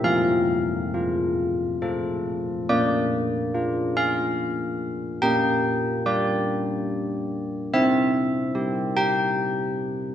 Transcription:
\new Staff \with { instrumentName = "Church bells" } { \time 3/4 \key bes \lydian \tempo 4 = 72 << { f''2~ f''8 r8 | d''4. f''4. | g''4 d''4. r8 | e''4. g''4. | } \\ { f4 f'4 <f' a'>4 | bes4 f'2 | bes4 g'2 | c'4 g'2 | } >> }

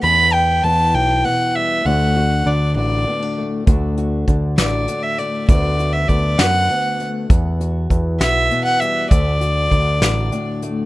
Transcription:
<<
  \new Staff \with { instrumentName = "Fiddle" } { \time 6/8 \key d \major \tempo 4. = 66 b''8 g''8 a''8 g''8 fis''8 e''8 | fis''4 d''8 d''4 r8 | r4. d''8. e''16 d''8 | d''8. e''16 d''8 fis''4 r8 |
r4. e''8. fis''16 e''8 | d''2~ d''8 r8 | }
  \new Staff \with { instrumentName = "Steel-string acoustic guitar" } { \time 6/8 \key d \major << { b4 b4 b8 g8 | <d a d' fis'>8 fis'8 d'8 fis'8 b16 d'16 a8 | <d a d' fis'>8 fis'8 d'8 fis'8 d'8 a8 | <d a b fis'>8 fis'8 b8 fis'8 b8 a8 |
b8 fis'8 b8 fis'8 b8 g8 | d'8 fis'8 d'8 fis'8 d'8 a8 | } \\ { e,4 e4 b,4 | d,4 d4 a,4 | d,4 d4 a,4 | d,4 d4 d,4 |
e,4 e4 b,4 | d,4 d4 a,4 | } >> }
  \new Staff \with { instrumentName = "Picked electric bass" } { \clef bass \time 6/8 \key d \major e,4 e,8 b,,8 r4 | d,4 d,8 a,,8 r4 | d,4 d,8 a,,8 r4 | d,4 d,8 fis,8 r4 |
e,4 e,8 b,,8 r4 | d,4 d,8 a,,8 r4 | }
  \new DrumStaff \with { instrumentName = "Drums" } \drummode { \time 6/8 r4. r4. | r4. r4. | <hh bd>8 hh8 <hh bd>8 <hh sn>8 hh8 hh8 | <hh bd>8 hh8 <hh bd>8 <hh sn>8 hh8 hh8 |
<hh bd>8 hh8 <hh bd>8 <hh sn>8 hh8 hh8 | <hh bd>8 hh8 <hh bd>8 <hh sn>8 hh8 hh8 | }
>>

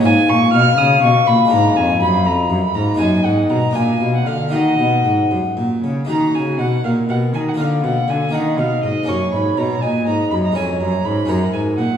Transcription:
<<
  \new Staff \with { instrumentName = "Violin" } { \time 6/8 \key ees \minor \tempo 4. = 81 aes''8 des'''8 f'''8 ees'''8 des'''8 ces'''8 | bes''8 aes''8 ces'''8 bes''8. ces'''16 bes''8 | aes''8 ges''8 bes''8 aes''8. ges''16 f''8 | ees''4. r4. |
bes''8 aes''8 ges''8 f''8 ges''8 aes''16 ges''16 | f''8 ges''8 aes''8 ges''8 f''8 ees''8 | des'''8 ces'''8 bes''8 aes''8 bes''8 ces'''16 bes''16 | aes''8 bes''8 ces'''8 bes''8 aes''8 ges''8 | }
  \new Staff \with { instrumentName = "Flute" } { \time 6/8 \key ees \minor f''2.~ | f''2~ f''8 r8 | ees''4. f''4. | ges''2~ ges''16 r8. |
ges'4. bes'4. | f''4. ees''4. | des''4. ees''4. | des''4. bes'4. | }
  \new Staff \with { instrumentName = "Harpsichord" } { \time 6/8 \key ees \minor <aes ces' ees' aes'>2. | <aes bes d' f'>2. | <bes ees' ges'>4. <bes d' f'>4. | <bes ees' ges'>2. |
<bes ees' ges'>2. | <bes f' bes'>4. <bes ees' bes'>4. | <bes des' bes'>2. | <aes des' des''>4. <des' ges' des''>4. | }
  \new Staff \with { instrumentName = "Harpsichord" } { \clef bass \time 6/8 \key ees \minor aes,8 bes,8 ces8 des8 ces8 bes,8 | aes,8 f,8 ges,8 f,8 ges,8 aes,8 | ges,8 aes,8 ces8 bes,8 ces8 d8 | ees8 ces8 aes,8 ges,8 bes,8 des8 |
ees8 des8 ces8 bes,8 ces8 ees8 | d8 ces8 d8 ees8 ces8 aes,8 | ges,8 aes,8 ces8 bes,8 aes,8 ges,8 | f,8 ges,8 aes,8 ges,8 aes,8 bes,8 | }
  \new Staff \with { instrumentName = "Cello" } { \clef bass \time 6/8 \key ees \minor aes,8 bes,8 ces8 des8 ces8 bes,8 | aes,8 f,8 ges,8 f,8 ges,8 aes,8 | ges,8 aes,8 ces8 bes,8 ces8 d8 | ees8 ces8 aes,8 ges,8 bes,8 des8 |
ees8 des8 ces8 bes,8 ces8 ees8 | d8 ces8 d8 ees8 ces8 aes,8 | ges,8 aes,8 ces8 bes,8 aes,8 ges,8 | f,8 ges,8 aes,8 ges,8 aes,8 bes,8 | }
>>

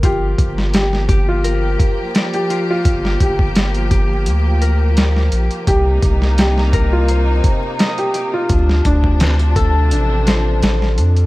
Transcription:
<<
  \new Staff \with { instrumentName = "Harp" } { \time 4/4 \key g \minor \tempo 4 = 85 f'4. g'8 bes'8 r8 d''8 f'8~ | f'4. g'4 bes'8 r4 | g'4. bes'8 c''8 r8 ees''8 g'8 | r4. a'4 c''8 r4 | }
  \new Staff \with { instrumentName = "Felt piano" } { \time 4/4 \key g \minor g'4 g'8. f'8. r8. g'8 f'16~ | f'8 g'4 r2 r8 | g'4 g'8. f'8. r8. g'8 f'16~ | f'8 d'4 r2 r8 | }
  \new Staff \with { instrumentName = "String section" } { \time 4/4 \key g \minor <f bes g'>1~ | <f bes g'>1 | <c bes ees'>1 | <c f d'>1 | }
  \new Staff \with { instrumentName = "Analog synth bass" } { \clef bass \time 4/4 \key g \minor g,,8 g,,2 r4. | g,,8 g,,4. d,4. bes,,8 | c,8 c,2 r4. | d,8 d,4. a,,4 a,,8 f,8 | }
  \new DrumStaff \with { instrumentName = "Drums" } \drummode { \time 4/4 <hh bd>8 <hh bd>16 sn16 <hh sn>16 sn16 <hh bd>8 hh8 <hh bd>8 <hh sn>16 hh16 hh8 | <hh bd>16 sn16 <hh bd>16 bd16 <hh sn>16 hh16 <hh bd>8 hh8 hh8 <hh sn>16 sn16 hh16 hh16 | <hh bd>8 <hh bd>16 sn16 <hh sn>16 sn16 <hh bd>8 hh8 <hh bd>8 <hh sn>16 hh16 hh8 | <hh bd>16 sn16 <hh bd>16 bd16 <hh sn>16 hh16 <hh bd>8 hh8 <hh sn>8 <hh sn>16 sn16 hh16 hh16 | }
>>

